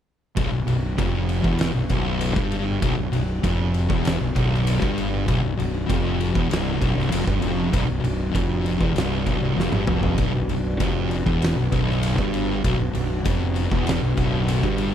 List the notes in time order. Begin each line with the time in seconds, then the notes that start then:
0.36 B0 B1 B3 D4 F#4, kick, ride
0.52 B0 B1
0.67 B0 B1, ride
0.98 F1 F2, kick, ride
1.29 ride
1.43 E1 E2, kick
1.59 snare, ride
1.73 B0 B1
1.89 B0 B1, kick, ride
2.21 ride
2.36 G1 G2, kick
2.52 ride
2.82 B0 B1, kick, ride
2.97 B0 B1
3.12 B0 B1, ride
3.43 F1 F2, kick, ride
3.74 ride
3.89 E1 E2, kick
4.05 snare, ride
4.20 B0 B1
4.35 B0 B1, kick, ride
4.55 snare
4.67 ride
4.80 G1 G2, kick
4.98 ride
5.27 B0 B1, kick, ride
5.42 B0 B1
5.57 B0 B1, ride
5.87 F1 F2, kick, ride
6.21 ride
6.34 E1 E2, kick
6.49 C1 C2, ride
6.53 snare
6.80 B0 B1, kick, ride
6.96 C1 C2, snare
7.10 F1 F2, ride
7.25 G1 G2, kick
7.40 F1 F2, ride
7.71 B0 B1, kick, ride
7.85 B0 B1
7.89 B1
8.00 B1
8.04 B0 B1, ride
8.31 F1 F2, kick
8.35 ride
8.66 ride
8.78 E1 E2, kick
8.94 C1 C2, snare, ride
9.25 B0 B1, kick, ride
9.42 C1 C2
9.56 F1 F2, snare
9.70 G1 G2, high tom
9.87 F1 F2, mid tom
10.03 floor tom
10.18 B0 B1, kick, ride
10.33 B0 B1
10.48 B0 B1, ride
10.80 F1 F2, kick, ride
11.11 ride
11.26 E1 E2, kick
11.42 snare, ride
11.57 B0 B1
11.72 B0 B1, kick, ride
11.90 snare
12.03 ride
12.18 G1 G2, kick
12.34 ride
12.64 B0 B1, kick, ride
12.79 B0 B1
12.93 B0 B1, ride
13.24 F1 F2, kick, ride
13.56 ride
13.72 E1 E2, kick
13.87 snare, ride
14.02 B0 B1
14.17 B0 B1, kick, ride
14.48 ride
14.63 G1 G2, kick
14.78 ride